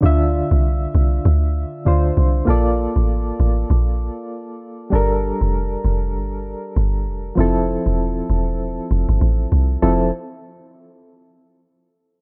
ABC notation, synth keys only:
X:1
M:4/4
L:1/8
Q:"Swing 16ths" 1/4=98
K:F
V:1 name="Synth keys"
[D,DFe]6 [D,DFc]2 | [B,FAd]8 | [G,DAB]8 | [F,CEA]8 |
[F,CEA] z6 z |]